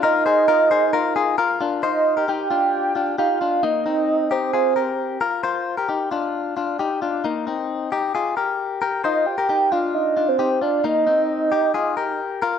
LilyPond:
<<
  \new Staff \with { instrumentName = "Soft synth lead" } { \time 4/4 \key bes \mixolydian \tempo 4 = 133 ees''2. r4 | ees''4 g''2 f''4 | ees''4. c''2 r8 | r1 |
r1 | ees''8 g''4 f''8 ees''8. c''8. d''8 | ees''2. r4 | }
  \new Staff \with { instrumentName = "Clean electric guitar" } { \time 4/4 \key bes \mixolydian <f' bes'>8 <aes' c''>8 <f' bes'>8 <aes' c''>8 <f' bes'>8 <f' aes'>8 <f' bes'>8 <d' f'>8 | <f' c''>8. <g' bes'>16 <ees' g'>8 <d' f'>4 <d' f'>8 <ees' g'>8 <d' f'>8 | <bes ees'>8 <c' ees'>4 <ees' g'>8 <f' aes'>8 <g' bes'>4 <f' bes'>8 | <f' c''>8. <g' bes'>16 <ees' g'>8 <d' f'>4 <d' f'>8 <ees' g'>8 <d' f'>8 |
<bes ees'>8 <c' ees'>4 <ees' g'>8 <f' aes'>8 <g' bes'>4 <g' bes'>8 | <f' c''>8. <g' bes'>16 <ees' g'>8 <d' f'>4 <d' f'>8 <ees' g'>8 <d' f'>8 | <bes ees'>8 <c' ees'>4 <ees' g'>8 <f' aes'>8 <g' bes'>4 <f' bes'>8 | }
>>